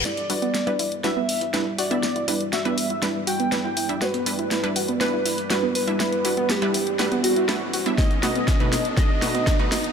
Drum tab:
HH |xxoxxxoxx-oxx-ox|xxoxxxoxx-oxx-ox|xxoxxxoxx-oxx-ox|xxoxxxoxxxoxx-ox|
TB |x-x-x-x-x---x-x-|x-x-x-x-x-x-x-x-|x-x-x-x-x---x-x-|x-x-x-x-x-x-x-x-|
SD |o---o---o---o-o-|o---o---o---o---|o---o---o---o-o-|o---o---o---o---|
BD |----------------|----------------|----------------|----------------|

HH |xxoxxxoxx-oxx-ox|
TB |x-x-x-x-x---x-x-|
SD |o-o-o-o-o-o-o-o-|
BD |o---o---o---o---|